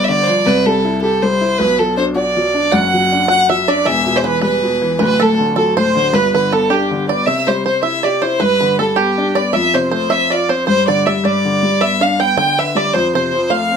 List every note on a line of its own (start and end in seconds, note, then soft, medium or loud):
0.00 0.40 G1 medium
0.00 0.41 G2 medium
0.04 0.24 D5 loud
0.04 0.09 E5 medium
0.09 0.26 D3 medium
0.23 0.28 C5 medium
0.23 0.47 D5 loud
0.27 0.44 F3 medium
0.45 1.55 C2 medium
0.45 1.56 C3 medium
0.45 0.67 B4 loud
0.66 0.83 G3 medium
0.66 1.01 A4 loud
0.85 1.02 E4 medium
1.01 1.22 G4 medium
1.01 1.24 A4 loud
1.22 1.40 G3 medium
1.22 1.59 C5 loud
1.41 1.58 E4 medium
1.58 2.69 B1 medium
1.58 2.69 B2 medium
1.58 1.80 B4 loud
1.79 1.97 F#3 medium
1.79 1.96 A4 medium
1.97 2.15 D4 medium
1.97 2.05 C5 medium
2.15 2.36 F#4 medium
2.15 2.73 D5 medium
2.37 2.54 F#3 medium
2.54 2.72 D4 medium
2.72 3.82 F#1 medium
2.72 3.83 F#2 medium
2.72 3.29 F#5 loud
2.72 3.27 F#5 medium
2.93 3.11 F#3 medium
3.12 3.29 D4 medium
3.28 3.49 F#4 medium
3.28 3.48 F#5 medium
3.28 3.49 F#5 loud
3.50 3.68 F#3 medium
3.50 3.68 E5 medium
3.50 3.70 E5 medium
3.68 3.85 D4 medium
3.68 3.85 D5 medium
3.68 3.88 D5 loud
3.85 4.96 E1 medium
3.85 4.96 E2 medium
3.85 4.13 E5 medium
3.85 4.18 E5 loud
4.06 4.24 B2 medium
4.16 4.24 C5 medium
4.16 4.27 C5 medium
4.24 4.43 E3 medium
4.24 4.40 B4 medium
4.24 4.42 B4 loud
4.42 4.63 G3 medium
4.42 4.98 B4 medium
4.42 4.96 B4 medium
4.63 4.81 B2 medium
4.81 4.99 E3 medium
4.99 6.10 D1 medium
4.99 6.10 D2 medium
4.99 5.19 B4 medium
4.99 5.23 B4 loud
5.20 5.38 A2 medium
5.20 5.54 A4 medium
5.20 5.57 A4 loud
5.39 5.56 D3 medium
5.56 5.77 F#3 medium
5.56 5.78 A4 medium
5.56 5.76 A4 medium
5.77 5.95 A2 medium
5.77 6.13 C5 medium
5.77 6.16 C5 loud
5.95 6.13 D3 medium
6.13 7.23 G1 medium
6.13 7.23 G2 medium
6.13 6.33 B4 medium
6.13 6.34 B4 loud
6.34 6.52 D3 medium
6.34 6.54 B4 medium
6.34 6.53 B4 medium
6.52 6.70 B3 medium
6.52 6.71 A4 medium
6.52 6.74 A4 medium
6.70 6.90 D4 medium
6.70 7.23 G4 medium
6.70 7.08 G4 medium
6.91 7.08 D3 medium
7.09 7.27 B3 medium
7.09 7.27 D5 medium
7.09 7.26 D5 medium
7.26 8.37 C3 medium
7.26 7.49 E5 loud
7.26 7.46 E5 medium
7.47 7.65 G3 medium
7.47 7.64 C5 medium
7.47 7.65 C5 medium
7.65 7.83 C4 soft
7.65 7.82 C5 medium
7.83 8.04 E4 medium
7.83 8.02 E5 medium
7.83 8.06 E5 medium
8.03 8.22 G4 medium
8.03 8.22 D5 medium
8.03 8.23 D5 medium
8.22 8.40 E4 medium
8.22 8.39 C5 medium
8.22 8.42 C5 medium
8.40 9.51 G2 medium
8.40 8.59 B4 medium
8.40 8.79 B4 loud
8.61 8.79 D3 medium
8.61 8.78 B4 medium
8.79 8.97 G3 medium
8.79 8.98 A4 medium
8.96 9.17 B3 medium
8.96 9.37 G4 medium
9.18 9.35 D4 medium
9.35 9.53 B3 medium
9.35 9.52 D5 medium
9.35 9.55 D5 medium
9.53 10.64 F2 medium
9.53 9.73 E5 medium
9.53 9.76 E5 loud
9.74 9.92 C3 medium
9.74 9.90 C5 medium
9.74 9.93 C5 medium
9.91 10.10 A3 medium
9.91 10.11 C5 medium
9.91 10.13 C5 medium
10.10 10.31 C4 medium
10.10 10.29 E5 medium
10.10 10.33 E5 loud
10.30 10.49 F4 medium
10.30 10.48 D5 medium
10.30 10.51 D5 medium
10.49 10.67 C4 medium
10.49 10.66 C5 medium
10.49 10.67 C5 medium
10.67 11.22 G2 medium
10.67 10.88 C5 medium
10.67 10.86 C5 loud
10.88 11.06 D3 medium
10.88 11.07 D5 medium
10.88 11.05 D5 medium
11.06 11.24 G3 medium
11.06 11.17 E5 medium
11.06 11.23 E5 medium
11.17 11.25 E5 medium
11.24 12.34 G2 medium
11.24 11.82 D5 loud
11.24 11.77 D5 medium
11.45 11.62 D3 medium
11.63 11.80 G3 soft
11.81 12.01 B3 medium
11.81 12.03 E5 loud
11.81 12.01 E5 medium
12.01 12.18 D4 medium
12.01 12.18 F5 medium
12.01 12.22 F5 loud
12.19 12.37 B3 medium
12.19 12.36 G5 medium
12.19 12.38 G5 loud
12.37 12.92 D3 medium
12.37 12.56 G5 loud
12.37 12.60 G5 loud
12.58 12.76 B4 soft
12.58 12.78 E5 medium
12.58 12.75 E5 medium
12.75 12.93 G3 medium
12.75 12.95 D5 loud
12.75 12.93 D5 medium
12.94 13.77 F2 medium
12.94 13.14 C5 loud
12.94 13.14 C5 medium
13.14 13.32 C3 medium
13.14 13.52 C5 medium
13.14 13.48 C5 medium
13.32 13.50 F3 medium
13.50 13.70 A3 medium
13.50 13.77 F5 medium
13.50 13.77 F5 loud
13.71 13.77 C4 medium